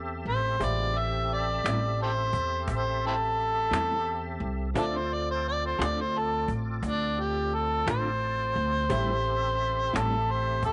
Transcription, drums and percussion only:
0.26 cajon slap
0.61 cajon bass
0.95 cajon slap
1.30 cajon slap
1.66 cajon slap
1.99 cajon slap
2.33 cajon bass
2.68 cajon bass
3.03 cajon slap
3.38 cajon slap
3.40 cajon slap
3.73 cajon slap
4.07 cajon slap
4.42 cajon slap
4.76 cajon bass
5.11 cajon slap
5.45 cajon slap
5.82 cajon slap
6.14 cajon slap
6.48 cajon bass
6.83 cajon bass
7.17 cajon slap
7.52 cajon slap
7.88 cajon slap
8.20 cajon slap
8.56 cajon slap
8.90 cajon bass
9.25 cajon slap
9.59 cajon slap
9.96 cajon slap
10.28 cajon slap
10.63 cajon bass

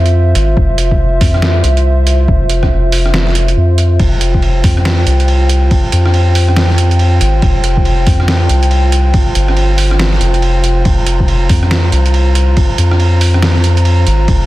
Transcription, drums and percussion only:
0.06 closed hi-hat
0.35 closed hi-hat
0.57 kick
0.78 closed hi-hat
0.91 kick
1.21 kick, open hi-hat
1.34 cross-stick
1.42 snare
1.64 closed hi-hat
1.77 closed hi-hat
2.07 closed hi-hat
2.28 kick
2.50 closed hi-hat
2.63 kick, cross-stick
2.92 open hi-hat
3.06 cross-stick
3.14 snare
3.27 snare
3.35 closed hi-hat
3.48 closed hi-hat
3.78 closed hi-hat
4.00 kick, ride
4.21 closed hi-hat
4.34 kick
4.42 ride
4.64 kick, open hi-hat
4.77 cross-stick
4.85 snare, ride
5.07 closed hi-hat
5.20 closed hi-hat
5.28 ride
5.49 closed hi-hat
5.71 kick, ride
5.92 closed hi-hat
6.06 cross-stick
6.14 ride
6.35 open hi-hat
6.48 cross-stick
6.57 snare, ride
6.70 snare
6.78 closed hi-hat
6.91 closed hi-hat
6.99 ride
7.21 closed hi-hat
7.42 kick, ride
7.64 closed hi-hat
7.77 kick
7.85 ride
8.07 kick, open hi-hat
8.20 cross-stick
8.28 snare, ride
8.49 closed hi-hat
8.63 closed hi-hat
8.71 ride
8.92 closed hi-hat
9.14 kick, ride
9.35 closed hi-hat
9.48 cross-stick
9.57 ride
9.78 open hi-hat
9.91 cross-stick
9.99 snare, ride
10.13 snare
10.21 closed hi-hat
10.34 closed hi-hat
10.42 ride
10.64 closed hi-hat
10.85 kick, ride
11.07 closed hi-hat
11.20 kick
11.28 ride
11.49 kick, open hi-hat
11.63 cross-stick
11.71 snare, ride
11.92 closed hi-hat
12.06 closed hi-hat
12.14 ride
12.35 closed hi-hat
12.57 kick, ride
12.78 closed hi-hat
12.91 cross-stick
13.00 ride
13.21 open hi-hat
13.34 cross-stick
13.42 snare, ride
13.56 snare
13.64 closed hi-hat
13.77 closed hi-hat
13.85 ride
14.07 closed hi-hat
14.28 kick, ride

